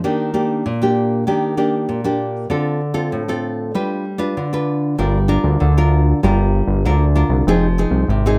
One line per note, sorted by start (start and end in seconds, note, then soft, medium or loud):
0.04 0.62 D#3 medium
0.04 0.29 A#3 medium
0.04 0.30 D4 soft
0.04 0.30 G4 medium
0.34 0.63 A#3 soft
0.34 0.63 D4 medium
0.34 0.63 G4 medium
0.66 1.24 A#2 medium
0.82 1.23 A#3 medium
0.82 1.23 D4 medium
0.82 1.23 G4 medium
1.27 1.86 D#3 medium
1.27 1.53 A#3 soft
1.27 1.53 D4 soft
1.27 1.53 G4 medium
1.57 1.99 A#3 soft
1.57 1.99 D4 medium
1.57 2.00 G4 medium
1.89 2.48 A#2 medium
2.04 2.46 A#3 medium
2.04 2.46 D4 medium
2.04 2.47 G4 medium
2.50 3.10 D3 medium
2.50 2.80 C4 soft
2.50 2.80 F4 soft
2.50 2.80 A4 medium
2.94 3.22 C4 medium
2.94 3.22 F4 medium
2.94 3.22 A4 medium
3.12 3.72 A2 medium
3.28 3.70 C4 soft
3.28 3.70 F4 medium
3.28 3.71 A4 medium
3.75 4.34 G3 medium
3.75 4.04 D4 soft
3.75 4.04 F4 medium
3.75 4.04 B4 medium
4.18 4.46 D4 medium
4.18 4.46 F4 medium
4.18 4.47 B4 medium
4.37 4.96 D3 medium
4.53 4.94 D4 medium
4.53 4.94 F4 medium
4.53 4.95 B4 medium
4.98 5.38 G1 medium
4.98 5.58 G3 medium
4.98 5.17 D4 medium
4.98 5.17 F4 soft
4.98 5.17 A#4 medium
5.28 5.71 D4 medium
5.28 5.71 F4 medium
5.28 5.71 A#4 medium
5.44 5.58 D2 medium
5.60 6.14 D2 medium
5.60 6.20 D3 medium
5.77 6.19 D4 medium
5.77 6.19 F4 medium
5.77 6.19 A#4 medium
6.23 6.63 G1 loud
6.23 6.82 G3 medium
6.23 6.80 D4 medium
6.23 6.80 F4 soft
6.23 6.81 A#4 medium
6.67 6.86 G1 medium
6.85 7.24 D2 medium
6.85 7.44 D3 medium
6.85 7.03 D4 soft
6.85 7.04 F4 medium
6.85 7.04 A#4 medium
7.15 7.44 D4 medium
7.15 7.44 F4 medium
7.15 7.44 A#4 medium
7.29 7.43 C2 medium
7.47 7.86 F1 medium
7.47 8.06 F3 medium
7.47 7.65 C4 medium
7.47 7.66 D#4 medium
7.47 7.66 G#4 medium
7.78 8.07 C4 medium
7.78 8.07 D#4 medium
7.78 8.07 G#4 medium
7.91 8.05 C2 medium
8.08 8.39 G#1 medium
8.08 8.39 C3 medium
8.26 8.39 C4 medium
8.26 8.39 D#4 medium
8.26 8.39 G#4 medium